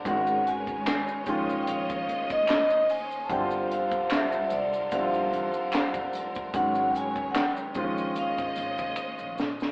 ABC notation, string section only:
X:1
M:4/4
L:1/8
Q:"Swing 16ths" 1/4=74
K:Bblyd
V:1 name="String section"
[_A,_GB_c_d]3 [B,_A=c_e]4- [B,Ace] | [G,FAB]8 | [_G,_A,_c_d]3 [B,_A=cd_e]4- [B,Acde] |]